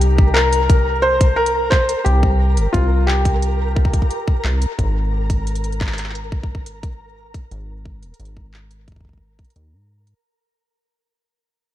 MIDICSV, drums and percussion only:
0, 0, Header, 1, 2, 480
1, 0, Start_track
1, 0, Tempo, 681818
1, 1450, Time_signature, 4, 2, 24, 8
1, 8271, End_track
2, 0, Start_track
2, 0, Title_t, "Drums"
2, 10, Note_on_c, 9, 42, 53
2, 80, Note_off_c, 9, 42, 0
2, 130, Note_on_c, 9, 36, 105
2, 200, Note_off_c, 9, 36, 0
2, 250, Note_on_c, 9, 39, 114
2, 320, Note_off_c, 9, 39, 0
2, 370, Note_on_c, 9, 42, 66
2, 441, Note_off_c, 9, 42, 0
2, 490, Note_on_c, 9, 36, 117
2, 490, Note_on_c, 9, 42, 53
2, 560, Note_off_c, 9, 36, 0
2, 560, Note_off_c, 9, 42, 0
2, 850, Note_on_c, 9, 36, 105
2, 850, Note_on_c, 9, 42, 67
2, 920, Note_off_c, 9, 36, 0
2, 920, Note_off_c, 9, 42, 0
2, 1030, Note_on_c, 9, 42, 53
2, 1101, Note_off_c, 9, 42, 0
2, 1210, Note_on_c, 9, 36, 114
2, 1210, Note_on_c, 9, 39, 110
2, 1280, Note_off_c, 9, 36, 0
2, 1280, Note_off_c, 9, 39, 0
2, 1330, Note_on_c, 9, 42, 67
2, 1400, Note_off_c, 9, 42, 0
2, 1450, Note_on_c, 9, 42, 53
2, 1521, Note_off_c, 9, 42, 0
2, 1570, Note_on_c, 9, 36, 111
2, 1640, Note_off_c, 9, 36, 0
2, 1810, Note_on_c, 9, 42, 66
2, 1881, Note_off_c, 9, 42, 0
2, 1930, Note_on_c, 9, 36, 118
2, 1930, Note_on_c, 9, 42, 51
2, 2001, Note_off_c, 9, 36, 0
2, 2001, Note_off_c, 9, 42, 0
2, 2170, Note_on_c, 9, 39, 117
2, 2241, Note_off_c, 9, 39, 0
2, 2290, Note_on_c, 9, 36, 104
2, 2290, Note_on_c, 9, 42, 67
2, 2361, Note_off_c, 9, 36, 0
2, 2361, Note_off_c, 9, 42, 0
2, 2411, Note_on_c, 9, 42, 51
2, 2481, Note_off_c, 9, 42, 0
2, 2650, Note_on_c, 9, 36, 113
2, 2710, Note_off_c, 9, 36, 0
2, 2710, Note_on_c, 9, 36, 91
2, 2770, Note_off_c, 9, 36, 0
2, 2770, Note_on_c, 9, 36, 74
2, 2770, Note_on_c, 9, 42, 67
2, 2830, Note_off_c, 9, 36, 0
2, 2830, Note_on_c, 9, 36, 61
2, 2841, Note_off_c, 9, 42, 0
2, 2890, Note_on_c, 9, 42, 52
2, 2901, Note_off_c, 9, 36, 0
2, 2961, Note_off_c, 9, 42, 0
2, 3010, Note_on_c, 9, 36, 102
2, 3081, Note_off_c, 9, 36, 0
2, 3130, Note_on_c, 9, 39, 118
2, 3201, Note_off_c, 9, 39, 0
2, 3250, Note_on_c, 9, 42, 67
2, 3321, Note_off_c, 9, 42, 0
2, 3370, Note_on_c, 9, 36, 118
2, 3371, Note_on_c, 9, 42, 52
2, 3441, Note_off_c, 9, 36, 0
2, 3441, Note_off_c, 9, 42, 0
2, 3730, Note_on_c, 9, 36, 104
2, 3730, Note_on_c, 9, 42, 66
2, 3800, Note_off_c, 9, 36, 0
2, 3801, Note_off_c, 9, 42, 0
2, 3851, Note_on_c, 9, 42, 48
2, 3910, Note_off_c, 9, 42, 0
2, 3910, Note_on_c, 9, 42, 40
2, 3970, Note_off_c, 9, 42, 0
2, 3970, Note_on_c, 9, 42, 32
2, 4030, Note_off_c, 9, 42, 0
2, 4030, Note_on_c, 9, 42, 27
2, 4090, Note_on_c, 9, 36, 118
2, 4090, Note_on_c, 9, 39, 110
2, 4101, Note_off_c, 9, 42, 0
2, 4130, Note_off_c, 9, 39, 0
2, 4130, Note_on_c, 9, 39, 92
2, 4160, Note_off_c, 9, 36, 0
2, 4170, Note_off_c, 9, 39, 0
2, 4170, Note_on_c, 9, 39, 77
2, 4210, Note_off_c, 9, 39, 0
2, 4210, Note_on_c, 9, 39, 63
2, 4210, Note_on_c, 9, 42, 66
2, 4250, Note_off_c, 9, 39, 0
2, 4250, Note_on_c, 9, 39, 52
2, 4280, Note_off_c, 9, 42, 0
2, 4291, Note_off_c, 9, 39, 0
2, 4291, Note_on_c, 9, 39, 42
2, 4330, Note_on_c, 9, 42, 51
2, 4361, Note_off_c, 9, 39, 0
2, 4401, Note_off_c, 9, 42, 0
2, 4450, Note_on_c, 9, 36, 97
2, 4520, Note_off_c, 9, 36, 0
2, 4530, Note_on_c, 9, 36, 83
2, 4600, Note_off_c, 9, 36, 0
2, 4610, Note_on_c, 9, 36, 66
2, 4680, Note_off_c, 9, 36, 0
2, 4691, Note_on_c, 9, 42, 64
2, 4761, Note_off_c, 9, 42, 0
2, 4810, Note_on_c, 9, 36, 123
2, 4810, Note_on_c, 9, 42, 49
2, 4880, Note_off_c, 9, 36, 0
2, 4881, Note_off_c, 9, 42, 0
2, 5170, Note_on_c, 9, 36, 106
2, 5170, Note_on_c, 9, 42, 64
2, 5240, Note_off_c, 9, 36, 0
2, 5240, Note_off_c, 9, 42, 0
2, 5290, Note_on_c, 9, 42, 47
2, 5361, Note_off_c, 9, 42, 0
2, 5530, Note_on_c, 9, 36, 118
2, 5600, Note_off_c, 9, 36, 0
2, 5650, Note_on_c, 9, 42, 58
2, 5720, Note_off_c, 9, 42, 0
2, 5730, Note_on_c, 9, 42, 47
2, 5770, Note_off_c, 9, 42, 0
2, 5770, Note_on_c, 9, 42, 49
2, 5810, Note_off_c, 9, 42, 0
2, 5810, Note_on_c, 9, 42, 38
2, 5881, Note_off_c, 9, 42, 0
2, 5890, Note_on_c, 9, 36, 103
2, 5960, Note_off_c, 9, 36, 0
2, 6010, Note_on_c, 9, 39, 114
2, 6081, Note_off_c, 9, 39, 0
2, 6130, Note_on_c, 9, 42, 60
2, 6200, Note_off_c, 9, 42, 0
2, 6250, Note_on_c, 9, 36, 111
2, 6250, Note_on_c, 9, 42, 47
2, 6280, Note_off_c, 9, 36, 0
2, 6280, Note_on_c, 9, 36, 91
2, 6310, Note_off_c, 9, 36, 0
2, 6310, Note_on_c, 9, 36, 74
2, 6320, Note_off_c, 9, 42, 0
2, 6340, Note_off_c, 9, 36, 0
2, 6340, Note_on_c, 9, 36, 62
2, 6370, Note_off_c, 9, 36, 0
2, 6370, Note_on_c, 9, 36, 49
2, 6400, Note_off_c, 9, 36, 0
2, 6400, Note_on_c, 9, 36, 40
2, 6430, Note_off_c, 9, 36, 0
2, 6430, Note_on_c, 9, 36, 33
2, 6460, Note_off_c, 9, 36, 0
2, 6460, Note_on_c, 9, 36, 26
2, 6530, Note_off_c, 9, 36, 0
2, 6610, Note_on_c, 9, 36, 100
2, 6610, Note_on_c, 9, 42, 27
2, 6650, Note_off_c, 9, 42, 0
2, 6650, Note_on_c, 9, 42, 37
2, 6680, Note_off_c, 9, 36, 0
2, 6690, Note_off_c, 9, 42, 0
2, 6690, Note_on_c, 9, 42, 48
2, 6730, Note_off_c, 9, 42, 0
2, 6730, Note_on_c, 9, 42, 48
2, 6800, Note_off_c, 9, 42, 0
2, 7090, Note_on_c, 9, 42, 58
2, 7160, Note_off_c, 9, 42, 0
2, 8271, End_track
0, 0, End_of_file